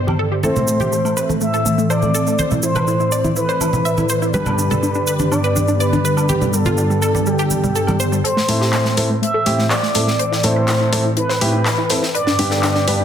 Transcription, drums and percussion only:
0.08 high conga, high woodblock
0.43 high conga, shaker
0.56 low conga, high woodblock, shaker
0.68 shaker
0.80 high conga, low conga, shaker
0.92 shaker
1.05 high woodblock, shaker
1.17 shaker
1.29 high conga, shaker
1.41 high woodblock, shaker
1.54 shaker
1.66 high conga, shaker
1.79 shaker
1.90 high woodblock, shaker
2.02 high conga, shaker
2.15 shaker
2.27 high woodblock, shaker
2.39 high conga, shaker
2.51 low conga, shaker
2.63 shaker
2.75 high conga, low conga, high woodblock, shaker
2.87 shaker
3.00 shaker
3.11 high woodblock, shaker
3.24 high conga, shaker
3.36 shaker
3.49 shaker
3.61 high conga, high woodblock, shaker
3.73 low conga, shaker
3.85 shaker
3.97 high conga, high woodblock, shaker
4.09 shaker
4.22 shaker
4.34 high conga, shaker
4.46 low conga, high woodblock, shaker
4.59 shaker
4.70 high conga, low conga, shaker
4.82 high woodblock, shaker
4.95 shaker
5.07 shaker
5.19 high conga, shaker
5.32 high woodblock, shaker
5.44 shaker
5.56 high conga, shaker
5.68 high woodblock, shaker
5.80 shaker
5.93 high conga, shaker
6.05 shaker
6.17 high woodblock, shaker
6.29 high conga, shaker
6.41 low conga, shaker
6.53 high woodblock, shaker
6.65 high conga, low conga, shaker
6.77 shaker
6.91 shaker
7.02 high woodblock, shaker
7.15 high conga, shaker
7.26 shaker
7.39 high woodblock, shaker
7.51 high conga, shaker
7.64 low conga, shaker
7.75 shaker
7.87 high conga, high woodblock, shaker
8.00 shaker
8.13 shaker
8.25 closed hi-hat
8.37 snare
8.48 closed hi-hat, open hi-hat
8.62 snare
8.73 snare, clap, closed hi-hat
8.85 snare
8.97 closed hi-hat, open hi-hat
9.23 closed hi-hat
9.46 closed hi-hat, open hi-hat
9.59 snare
9.70 snare, clap, closed hi-hat
9.83 snare
9.95 closed hi-hat, open hi-hat
10.08 snare
10.19 closed hi-hat
10.33 snare
10.43 closed hi-hat, open hi-hat
10.68 snare, clap, closed hi-hat
10.93 closed hi-hat, open hi-hat
11.17 closed hi-hat
11.30 snare
11.41 closed hi-hat, open hi-hat
11.65 snare, clap, closed hi-hat
11.90 snare, closed hi-hat, open hi-hat
12.03 snare
12.15 closed hi-hat
12.27 snare
12.39 closed hi-hat, open hi-hat
12.51 snare
12.63 snare, clap, closed hi-hat
12.75 snare
12.88 closed hi-hat, open hi-hat

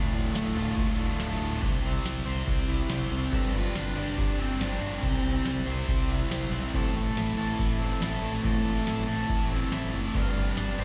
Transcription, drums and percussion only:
0.14 open hi-hat
0.35 snare, open hi-hat
0.56 open hi-hat
0.77 kick, open hi-hat
0.99 open hi-hat
1.20 snare, open hi-hat
1.41 open hi-hat
1.62 kick, open hi-hat
1.84 open hi-hat
2.05 snare, open hi-hat
2.26 open hi-hat
2.47 kick, open hi-hat
2.69 open hi-hat
2.89 snare, open hi-hat
3.12 open hi-hat
3.33 kick, open hi-hat
3.54 open hi-hat
3.75 snare, open hi-hat
3.97 open hi-hat
4.18 kick, open hi-hat
4.40 open hi-hat
4.61 snare, open hi-hat
4.82 open hi-hat
4.93 snare
5.03 kick, open hi-hat
5.25 open hi-hat
5.45 snare, open hi-hat
5.67 open hi-hat
5.88 kick, open hi-hat
6.10 open hi-hat
6.31 snare, open hi-hat
6.52 open hi-hat
6.74 kick, open hi-hat
6.96 open hi-hat
7.17 snare, open hi-hat
7.39 open hi-hat
7.59 kick, open hi-hat
7.81 open hi-hat
8.02 snare, open hi-hat
8.23 open hi-hat
8.35 snare
8.45 kick, open hi-hat
8.66 open hi-hat
8.87 snare, open hi-hat
9.09 open hi-hat
9.30 kick, open hi-hat
9.51 open hi-hat
9.72 snare, open hi-hat
9.94 open hi-hat
10.15 kick, open hi-hat
10.36 open hi-hat
10.57 snare, open hi-hat
10.78 open hi-hat

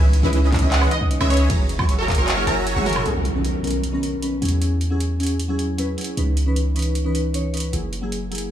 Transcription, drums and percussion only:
0.13 closed hi-hat
0.33 closed hi-hat
0.52 kick, clap, closed hi-hat
0.56 closed hi-hat
0.59 closed hi-hat
0.72 clap, closed hi-hat
0.82 high woodblock
0.91 closed hi-hat
1.01 kick
1.11 closed hi-hat
1.21 high woodblock
1.30 closed hi-hat, open hi-hat
1.37 closed hi-hat
1.50 kick, closed hi-hat, ride
1.69 closed hi-hat
1.79 kick, high woodblock
1.89 closed hi-hat
2.08 kick, clap, closed hi-hat
2.12 closed hi-hat
2.15 closed hi-hat
2.28 clap, closed hi-hat
2.47 closed hi-hat
2.67 closed hi-hat
2.76 high tom
2.86 closed hi-hat, open hi-hat, mid tom
2.93 closed hi-hat, mid tom, high woodblock
3.06 closed hi-hat
3.25 closed hi-hat
3.45 closed hi-hat
3.64 closed hi-hat
3.67 closed hi-hat
3.71 closed hi-hat
3.84 closed hi-hat
4.03 closed hi-hat
4.22 closed hi-hat
4.42 closed hi-hat
4.45 closed hi-hat
4.49 closed hi-hat
4.62 closed hi-hat
4.81 closed hi-hat
5.00 closed hi-hat
5.20 closed hi-hat
5.23 closed hi-hat
5.26 closed hi-hat
5.40 closed hi-hat
5.59 closed hi-hat
5.78 closed hi-hat
5.98 closed hi-hat
6.01 closed hi-hat
6.04 closed hi-hat
6.17 closed hi-hat
6.37 closed hi-hat
6.56 closed hi-hat
6.76 closed hi-hat
6.79 closed hi-hat
6.82 closed hi-hat
6.95 closed hi-hat
7.15 closed hi-hat
7.34 closed hi-hat
7.54 closed hi-hat
7.57 closed hi-hat
7.60 closed hi-hat
7.73 closed hi-hat
7.93 closed hi-hat
8.12 closed hi-hat
8.32 closed hi-hat
8.35 closed hi-hat
8.38 closed hi-hat

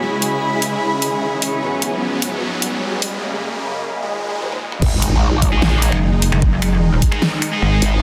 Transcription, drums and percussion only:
0.22 closed hi-hat
0.62 closed hi-hat
1.02 closed hi-hat
1.42 open hi-hat
1.82 closed hi-hat
2.22 closed hi-hat
2.62 closed hi-hat
3.02 open hi-hat
4.42 high tom
4.52 high tom
4.72 mid tom
4.82 kick, crash
5.02 closed hi-hat
5.42 kick, closed hi-hat
5.62 snare
5.82 closed hi-hat
5.92 finger snap
6.22 open hi-hat
6.32 finger snap
6.42 kick
6.62 finger snap, closed hi-hat
7.02 kick, closed hi-hat
7.12 finger snap
7.22 snare
7.42 finger snap, closed hi-hat
7.82 open hi-hat

